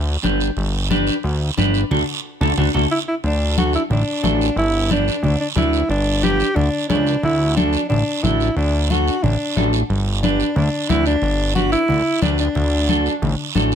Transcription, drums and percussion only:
0.23 high conga, short guiro
0.40 short guiro
0.57 high conga, long guiro
0.91 high conga, short guiro
1.07 short guiro
1.23 high conga, long guiro
1.57 high conga, short guiro
1.74 short guiro
1.91 low conga, long guiro
2.41 low conga, long guiro
2.58 low conga, long guiro
2.74 low conga, long guiro
3.24 high conga, long guiro
3.57 high conga, short guiro
3.73 short guiro
3.91 high conga, low conga, long guiro
4.24 high conga, short guiro
4.41 short guiro
4.57 high conga, long guiro
4.90 high conga, short guiro
5.08 short guiro
5.24 high conga, low conga, long guiro
5.56 high conga, low conga, short guiro
5.73 short guiro
5.90 high conga, long guiro
6.23 high conga, short guiro
6.40 short guiro
6.56 high conga, low conga, long guiro
6.90 high conga, short guiro
7.07 short guiro
7.23 high conga, low conga, long guiro
7.57 high conga, short guiro
7.73 short guiro
7.90 high conga, low conga, long guiro
8.24 high conga, low conga, short guiro
8.40 short guiro
8.57 high conga, long guiro
8.90 high conga, short guiro
9.08 short guiro
9.24 high conga, low conga, long guiro
9.56 high conga, short guiro
9.73 short guiro
9.90 high conga, long guiro
10.23 high conga, short guiro
10.40 short guiro
10.56 high conga, low conga, long guiro
10.89 high conga, low conga, short guiro
11.06 short guiro
11.22 high conga, long guiro
11.55 high conga, short guiro
11.72 short guiro
11.88 high conga, low conga, long guiro
12.22 high conga, short guiro
12.38 short guiro
12.55 high conga, low conga, long guiro
12.89 high conga, short guiro
13.06 short guiro
13.22 high conga, low conga, long guiro
13.55 high conga, short guiro
13.72 short guiro

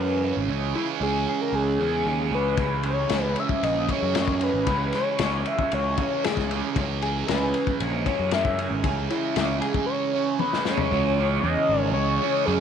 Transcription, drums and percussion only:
2.57 kick, ride
2.83 ride
3.09 snare, ride
3.36 ride
3.49 kick
3.63 ride
3.89 kick, ride
4.15 snare, ride
4.28 kick
4.41 ride
4.67 kick, ride
4.93 snare, ride
5.19 snare, ride
5.46 ride
5.59 kick
5.72 ride
5.98 kick, ride
6.24 snare, ride
6.37 kick, snare
6.51 ride
6.76 kick, ride
7.02 ride
7.28 snare, ride
7.54 ride
7.67 kick
7.80 ride
8.06 kick, ride
8.31 snare, ride
8.45 kick
8.59 ride
8.84 kick, ride
9.10 ride
9.36 snare, ride
9.62 ride
9.74 kick
10.39 high tom
10.53 snare
10.65 snare
10.78 floor tom

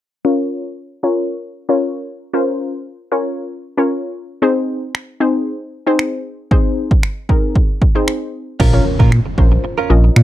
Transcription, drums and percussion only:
4.95 finger snap
5.99 finger snap
6.51 kick
6.91 kick
7.03 finger snap
7.29 kick
7.55 kick
7.82 kick
8.08 finger snap
8.60 kick, crash
9.00 kick
9.12 finger snap
9.38 kick
10.16 finger snap

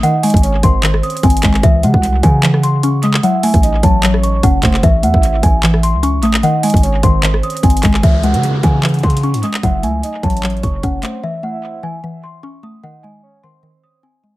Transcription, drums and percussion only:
0.03 closed hi-hat
0.23 closed hi-hat, open hi-hat
0.30 kick, closed hi-hat
0.37 closed hi-hat
0.43 closed hi-hat
0.63 kick, closed hi-hat
0.83 clap, closed hi-hat
0.94 cross-stick
1.03 closed hi-hat
1.10 closed hi-hat
1.17 closed hi-hat
1.23 kick, closed hi-hat
1.30 closed hi-hat
1.37 closed hi-hat
1.43 kick, clap, closed hi-hat
1.54 clap
1.63 kick, closed hi-hat
1.83 closed hi-hat
1.94 kick
2.03 closed hi-hat
2.23 kick, closed hi-hat
2.43 clap, closed hi-hat
2.54 cross-stick
2.63 closed hi-hat
2.83 closed hi-hat
3.03 closed hi-hat
3.14 clap
3.23 closed hi-hat
3.43 closed hi-hat, open hi-hat
3.54 kick, closed hi-hat
3.63 closed hi-hat
3.83 kick, closed hi-hat
4.03 clap, closed hi-hat
4.14 cross-stick
4.24 closed hi-hat
4.43 kick, closed hi-hat
4.63 kick, clap, closed hi-hat
4.74 clap
4.83 kick, closed hi-hat
5.03 closed hi-hat
5.14 kick
5.23 closed hi-hat
5.43 kick, closed hi-hat
5.63 clap, closed hi-hat
5.74 cross-stick
5.83 closed hi-hat
6.03 closed hi-hat
6.23 closed hi-hat
6.34 clap
6.43 closed hi-hat
6.63 closed hi-hat, open hi-hat
6.70 kick, closed hi-hat
6.77 closed hi-hat
6.83 closed hi-hat
7.03 kick, closed hi-hat
7.23 clap, closed hi-hat
7.34 cross-stick
7.43 closed hi-hat
7.50 closed hi-hat
7.57 closed hi-hat
7.63 kick, closed hi-hat
7.70 closed hi-hat
7.77 closed hi-hat
7.83 kick, clap, closed hi-hat
7.94 clap
8.03 kick, closed hi-hat
8.23 closed hi-hat
8.34 closed hi-hat
8.43 closed hi-hat
8.63 kick, closed hi-hat
8.83 clap, closed hi-hat
8.89 closed hi-hat
8.94 closed hi-hat
8.99 closed hi-hat
9.03 kick, closed hi-hat
9.10 closed hi-hat
9.17 closed hi-hat
9.23 closed hi-hat
9.34 closed hi-hat
9.43 closed hi-hat
9.54 clap
9.63 kick, closed hi-hat
9.83 closed hi-hat
10.03 closed hi-hat
10.23 kick, closed hi-hat
10.30 closed hi-hat
10.37 closed hi-hat
10.43 clap, closed hi-hat
10.50 closed hi-hat
10.57 closed hi-hat
10.63 kick, closed hi-hat
10.83 kick, closed hi-hat
11.03 clap, closed hi-hat

